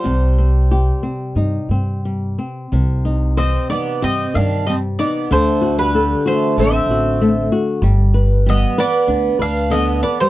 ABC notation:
X:1
M:4/4
L:1/16
Q:1/4=94
K:Cm
V:1 name="Mandolin"
c12 z4 | z4 e2 d2 e2 f2 e2 d2 | c3 =B3 c2 =e6 z2 | z4 e2 d4 f2 e2 d c |]
V:2 name="Nylon-string guitar"
C,2 C2 G2 C2 E2 C2 G,2 C2 | C,2 E2 c2 E2 G2 E,2 G,2 E2 | D,2 ^F2 =A2 F2 A2 F2 =A,2 F2 | G,2 =B2 G,2 B2 D2 B2 D,2 B2 |]
V:3 name="Twelve-string acoustic guitar"
G,12 z4 | z4 C2 =B,2 C2 D2 C2 B,2 | =A,3 G,3 A,2 C6 z2 | z4 =B,2 B,4 D2 B,2 B, G, |]
V:4 name="Upright bass" clef=bass
C,,8 G,,2 G,,6 | C,,8 G,,2 G,,6 | D,,8 =A,,,2 A,,,6 | G,,,8 D,,2 D,,6 |]